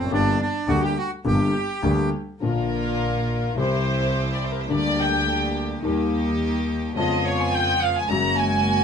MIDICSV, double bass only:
0, 0, Header, 1, 2, 480
1, 0, Start_track
1, 0, Key_signature, -2, "major"
1, 0, Tempo, 576923
1, 91, Time_signature, 4, 2, 24, 8
1, 2972, Tempo, 564972
1, 7447, End_track
2, 0, Start_track
2, 0, Title_t, "Double bass"
2, 0, Program_c, 0, 43
2, 0, Note_on_c, 0, 29, 55
2, 86, Note_off_c, 0, 29, 0
2, 91, Note_on_c, 0, 31, 88
2, 290, Note_off_c, 0, 31, 0
2, 559, Note_on_c, 0, 38, 84
2, 765, Note_off_c, 0, 38, 0
2, 1042, Note_on_c, 0, 31, 73
2, 1246, Note_off_c, 0, 31, 0
2, 1522, Note_on_c, 0, 38, 76
2, 1729, Note_off_c, 0, 38, 0
2, 2009, Note_on_c, 0, 34, 68
2, 2923, Note_off_c, 0, 34, 0
2, 2968, Note_on_c, 0, 36, 74
2, 3886, Note_off_c, 0, 36, 0
2, 3942, Note_on_c, 0, 38, 75
2, 4863, Note_off_c, 0, 38, 0
2, 4902, Note_on_c, 0, 39, 73
2, 5810, Note_off_c, 0, 39, 0
2, 5862, Note_on_c, 0, 41, 71
2, 6772, Note_off_c, 0, 41, 0
2, 6822, Note_on_c, 0, 30, 70
2, 7447, Note_off_c, 0, 30, 0
2, 7447, End_track
0, 0, End_of_file